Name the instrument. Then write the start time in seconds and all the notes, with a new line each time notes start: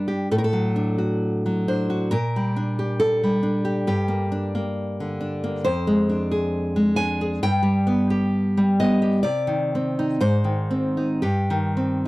nylon-string guitar
Already playing: G2 G3 D4
0.08 G4
0.31 A2 A4
0.38 A#4
0.44 A4
0.53 F#3
0.76 D4
0.98 F#4
1.46 F#3
1.68 D4 C5
1.90 F#4
2.11 A#2 A#4
2.36 G3
2.56 D4
2.79 G4
3.00 A4
3.23 G3
3.43 D4
3.65 G4
3.87 G2 G4
4.08 A#3
4.32 D4
4.55 A#3
5.00 D3
5.21 D4
5.44 A#3
5.64 F2 C5
5.87 G#3
6.09 D4
6.31 G#4
6.76 G#3
6.96 D4 G#5
7.21 G#4
7.43 G2 G5
7.63 G3
7.87 B3
8.10 G4
8.57 G3
8.80 B3 D#5
9.02 G4
9.23 C3 D5
9.47 D#3
9.75 C4
9.99 D#4
10.21 G#2 C5
10.44 D#3
10.71 C4
10.97 D#4
11.22 G2 G4
11.50 D#3
11.77 C4